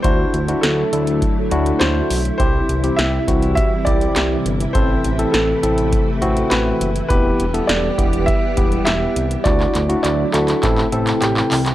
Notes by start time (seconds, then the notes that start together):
0.02 D2 D3 F#3 A3 D4 E4 F#4 C5, kick, closed hi-hat
0.34 D2, closed hi-hat
0.48 D4 E4 F#4, closed hi-hat
0.61 D2 A4, snare, closed hi-hat
0.92 D2 D4 E4 A4, closed hi-hat
1.07 closed hi-hat
1.22 kick, closed hi-hat
1.51 D2 D4 E4 F#4, closed hi-hat
1.66 closed hi-hat
1.79 D2 C5, snare, clap, closed hi-hat
2.10 B1, open hi-hat
2.25 closed hi-hat
2.38 C2 C3 E3 G3 C4 E4 G4 C5, kick, closed hi-hat
2.69 C2, closed hi-hat
2.84 C4 E4 G4, closed hi-hat
2.97 C2 E5, snare, closed hi-hat
3.28 C2 C4 E4 F#4, kick, closed hi-hat
3.42 closed hi-hat
3.55 E5, kick, closed hi-hat
3.85 C2 C4 E4 G4 D5, kick, closed hi-hat
4.01 closed hi-hat
4.16 C2, snare, clap, closed hi-hat
4.45 G1, closed hi-hat
4.60 closed hi-hat
4.73 A1 A3 C4 E4 A4 C5, kick, closed hi-hat
5.04 A1, closed hi-hat
5.19 C4 E4 A4, closed hi-hat
5.32 A1 A4, snare, closed hi-hat
5.63 A1 C4 E4 A4, closed hi-hat
5.78 closed hi-hat
5.93 kick, closed hi-hat
6.22 A1 C4 E4 F#4, closed hi-hat
6.37 closed hi-hat
6.50 A1 B4, snare, clap, closed hi-hat
6.81 F#1, closed hi-hat
6.96 closed hi-hat
7.08 E1 G3 B3 E4 G4 B4, kick, closed hi-hat
7.40 E1, closed hi-hat
7.54 B3 E4 A4, closed hi-hat
7.67 E1 D5, snare, closed hi-hat
7.98 E1 B3 E4 G4, kick, closed hi-hat
8.13 closed hi-hat
8.26 E5, kick, closed hi-hat
8.57 E1 B3 E4 G4, kick, closed hi-hat
8.72 closed hi-hat
8.85 E1 E5, snare, clap, closed hi-hat
9.16 C2, closed hi-hat
9.31 closed hi-hat
9.44 D2 D3 F#3 A3 D4 E4 F#4 D5, kick, clap, closed hi-hat
9.60 clap
9.75 D2, clap, closed hi-hat
9.89 D4 E4 F#4, closed hi-hat
10.03 D2 D5, clap, closed hi-hat
10.32 D2 D4 E4 F#4 A4, clap, closed hi-hat
10.48 clap, closed hi-hat
10.63 A1 C3 E3 C4 E4 A4, kick, clap, closed hi-hat
10.78 clap
10.92 A1 C4 E4 A4, closed hi-hat
11.07 clap, closed hi-hat
11.21 A1 G4, clap, closed hi-hat
11.37 clap
11.51 C2, clap, open hi-hat
11.66 clap, closed hi-hat